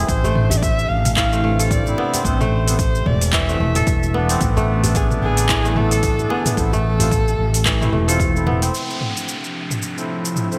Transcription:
Already playing: ambient pad C3 A3, kora E3 C4 E4 G#4
0.08 fretless electric bass A1, ambient pad D4, kamancheh C5, kick, open hi-hat, shaker
0.24 kora A3, djembe slap, djembe tone, djembe bass, shaker
0.36 mid tom
0.50 kamancheh E5, open hi-hat, djembe bass, shaker
0.57 kamancheh D5
0.62 kamancheh E5, kick, open hi-hat, shaker
0.79 shaker
0.89 fretless electric bass A1, kamancheh F5
1.05 mid tom, open hi-hat, shaker
1.16 kora E3, kamancheh F5, kick, clap, open hi-hat, djembe slap, shaker
1.32 harmonium E3 C4, kora A3, shaker
1.44 kora A3
1.59 kora A4, open hi-hat, shaker
1.71 kamancheh D5, kick, mid tom, open hi-hat, djembe slap, shaker
1.86 harmonium C4 E4, djembe tone, shaker
1.98 kora B3, djembe slap
2.14 kora C4, open hi-hat, djembe tone, shaker
2.23 fretless electric bass A1, ambient pad B2 E3 A3, harmonium A3 B3 C4, kamancheh C5, kick, open hi-hat, shaker
2.40 kora A3, mid tom, shaker
2.66 harmonium A3 B3 C4, open hi-hat, shaker
2.79 kamancheh C5, kick, open hi-hat, shaker
2.95 shaker
3.06 fretless electric bass E1, kamancheh D5, mid tom
3.21 open hi-hat, shaker
3.33 kora E3, kamancheh E5, kick, clap, open hi-hat, shaker
3.47 harmonium A3 B3 C4, kora A3, shaker
3.60 fretless electric bass E1, kora A3
3.75 kora A4, mid tom, open hi-hat, shaker
3.87 fretless electric bass E1, kick, open hi-hat, djembe tone, shaker
4.03 shaker
4.11 harmonium A3 B3, kora B3, djembe slap
4.16 harmonium D4
4.29 kora C4, open hi-hat, shaker
4.41 fretless electric bass A1, ambient pad D3 B3, kick, mid tom, open hi-hat, shaker
4.57 kora A3, djembe slap, djembe tone, djembe bass, shaker
4.84 open hi-hat, djembe bass, shaker
4.95 kamancheh G#4, kick, open hi-hat, shaker
5.11 mid tom, shaker
5.22 fretless electric bass A1, kamancheh G#4
5.37 open hi-hat, shaker
5.49 kora E3, kick, clap, open hi-hat, djembe slap, shaker
5.64 harmonium A3 B3 D4, kora A3, shaker
5.76 kora A3, kamancheh A4, mid tom
5.91 kora A4, open hi-hat, shaker
6.03 kick, open hi-hat, djembe slap, shaker
6.18 harmonium A3 B3 D4, djembe tone, shaker
6.29 kora B3, kamancheh G#4, djembe slap
6.45 kora B3, mid tom, open hi-hat, djembe tone, shaker
6.56 fretless electric bass A1, ambient pad C3, harmonium A3 C4 E4, kamancheh A4, kick, open hi-hat, shaker
6.72 kora A3, djembe tone, djembe bass, shaker
6.99 harmonium A3 C4 F4, open hi-hat, djembe bass, shaker
7.11 kick, mid tom, open hi-hat, shaker
7.28 shaker
7.39 fretless electric bass A1
7.54 open hi-hat, shaker
7.65 kora E3, kick, clap, open hi-hat, shaker
7.80 harmonium A3 C4 E4, kora A3, mid tom, shaker
7.92 fretless electric bass E1, kora A3, djembe tone
8.07 harmonium A3 C4 F4, kora A4, open hi-hat, shaker
8.20 kick, open hi-hat, djembe tone, shaker
8.34 harmonium A3 C4 E4, shaker
8.46 kora B3, mid tom, djembe slap, djembe tone
8.62 kora C4, open hi-hat, shaker
8.74 ambient pad C3 F3 A3 D4 E4, downlifter, shaker
8.90 shaker
9.01 mid tom
9.17 shaker
9.28 shaker
9.44 shaker
9.70 mid tom, shaker
9.82 shaker
9.96 harmonium A2 F3 A3 C4 E4, shaker
10.25 shaker
10.36 mid tom, shaker
10.50 harmonium A2 F3 A3 C4 E4, shaker

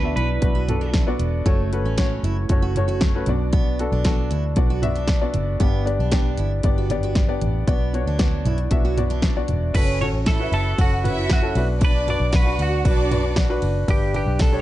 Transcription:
Already playing: fingered electric bass D2, grand piano B2 B3 D4 F#4 D5, steel-string acoustic guitar D4, clean electric guitar B4
0.03 grand piano B3 D4 F#4 E5
0.16 fingered electric bass B1, steel-string acoustic guitar E4, clean electric guitar B4, closed hi-hat
0.41 fingered electric bass B1, grand piano B3 D4 F#4 B4, kick, closed hi-hat
0.55 steel-string acoustic guitar F#4
0.68 grand piano B3 D4 F#4 A4, closed hi-hat, floor tom
0.81 steel-string acoustic guitar D4
0.94 kick, snare, closed hi-hat
1.07 grand piano B3 D4 F#4 D5
1.19 fingered electric bass E1, closed hi-hat
1.46 fingered electric bass F#1, grand piano A3 C#4 F#4 C#5, steel-string acoustic guitar A3, kick, closed hi-hat
1.73 grand piano A3 C#4 F#4 B4, closed hi-hat
1.84 fingered electric bass A1, steel-string acoustic guitar C#4
1.98 grand piano A3 C#4 F#4 C#5, steel-string acoustic guitar C#4, kick, snare, closed hi-hat
2.23 fingered electric bass F#1, steel-string acoustic guitar E4, closed hi-hat
2.49 fingered electric bass F#1, grand piano A3 C#4 F#4 C#5, kick, closed hi-hat
2.62 steel-string acoustic guitar F#4
2.76 grand piano A3 C#4 F#4 C#5, closed hi-hat, floor tom
2.88 steel-string acoustic guitar F#4, closed hi-hat
3.01 kick, snare, closed hi-hat
3.15 grand piano A3 C#4 F#4 B4
3.26 fingered electric bass B1, grand piano B2 B3 D4 F#4 D5, closed hi-hat, floor tom
3.53 steel-string acoustic guitar B3, kick, closed hi-hat
3.79 grand piano B3 D4 F#4 A4, closed hi-hat
3.92 fingered electric bass B1, steel-string acoustic guitar D4
4.05 grand piano B3 D4 F#4 A4, steel-string acoustic guitar D4, kick, snare, closed hi-hat
4.31 fingered electric bass D2, steel-string acoustic guitar E4, closed hi-hat
4.56 fingered electric bass B1, grand piano B3 D4 F#4 D5, kick, closed hi-hat
4.70 steel-string acoustic guitar F#4
4.82 grand piano B3 D4 F#4 E5, closed hi-hat, floor tom
4.96 steel-string acoustic guitar D4, closed hi-hat
5.08 kick, snare, closed hi-hat
5.21 grand piano B3 D4 F#4 D5
5.34 fingered electric bass F#1, closed hi-hat, floor tom
5.60 fingered electric bass G1, grand piano G2 B3 D4 G4 D5, steel-string acoustic guitar B3, kick, closed hi-hat
5.85 grand piano B3 D4 G4 D5, closed hi-hat
5.99 fingered electric bass B1, steel-string acoustic guitar D4
6.12 grand piano B3 D4 G4 D5, steel-string acoustic guitar D4, kick, snare, closed hi-hat
6.38 fingered electric bass G1, steel-string acoustic guitar E4, closed hi-hat
6.63 fingered electric bass G1, grand piano B3 D4 G4 D5, kick, closed hi-hat
6.78 steel-string acoustic guitar F#4
6.90 grand piano B3 D4 G4 D5, closed hi-hat, floor tom
7.03 steel-string acoustic guitar F#4, closed hi-hat
7.15 kick, snare, closed hi-hat
7.28 grand piano B3 D4 G4 D5
7.41 fingered electric bass A1, closed hi-hat, floor tom
7.67 fingered electric bass B1, grand piano B2 B3 D4 F#4 D5, steel-string acoustic guitar B3, kick, closed hi-hat
7.94 grand piano B3 D4 F#4 C#5, closed hi-hat
8.06 fingered electric bass D2, steel-string acoustic guitar D4
8.18 grand piano B3 D4 F#4 D5, steel-string acoustic guitar D4, kick, snare, closed hi-hat
8.45 fingered electric bass B1, steel-string acoustic guitar E4, closed hi-hat, floor tom
8.58 closed hi-hat
8.71 fingered electric bass B1, grand piano B3 D4 F#4 E5, kick, closed hi-hat
8.85 steel-string acoustic guitar F#4
8.97 grand piano B3 D4 F#4 D5, closed hi-hat, floor tom
9.10 steel-string acoustic guitar D4, closed hi-hat
9.22 kick, snare, closed hi-hat
9.36 grand piano B3 D4 F#4 D5
9.48 fingered electric bass E1, closed hi-hat, floor tom
9.74 fingered electric bass F#1, violin section C#4 C#5, grand piano C#4 F#4 A4, clean electric guitar B4, kick, crash, ride
10.01 grand piano C#4 F#4 A4, clean electric guitar C#5, floor tom, ride
10.13 fingered electric bass A1
10.26 violin section E4 E5, clean electric guitar A4, kick, snare, ride
10.39 grand piano C#4 F#4 B4
10.52 fingered electric bass F#1, clean electric guitar A4, ride
10.77 fingered electric bass F#1, grand piano C#4 F#4 A4, violin section F#4 F#5, clean electric guitar F#4, kick, ride
11.04 grand piano C#4 F#4 B4, violin section E4 E5, floor tom, ride
11.30 clean electric guitar F#4, kick, snare, ride
11.42 grand piano C#4 F#4 A4
11.55 fingered electric bass B1, grand piano B2 D4 F#4 B4, ride
11.81 violin section D4 D5, clean electric guitar B4, kick, ride
12.07 grand piano D4 F#4 B4, clean electric guitar D5, floor tom, ride
12.20 fingered electric bass B1
12.32 violin section F#4 F#5, clean electric guitar B4, kick, snare, ride
12.46 grand piano D4 F#4 B4
12.59 fingered electric bass D2, clean electric guitar F#4, ride
12.85 fingered electric bass B1, grand piano D4 F#4 B4, violin section D4 D5, kick, ride
13.11 grand piano D4 F#4 B4, floor tom, ride
13.36 kick, snare, ride
13.49 grand piano D4 F#4 B4
13.62 fingered electric bass F#1, ride
13.88 fingered electric bass G1, grand piano G2 D4 G4 B4, clean electric guitar G4, kick, ride
14.14 grand piano D4 G4 B4, clean electric guitar G4, floor tom, ride
14.26 fingered electric bass B1
14.39 clean electric guitar A4, kick, snare, ride
14.52 grand piano D4 G4 C#5

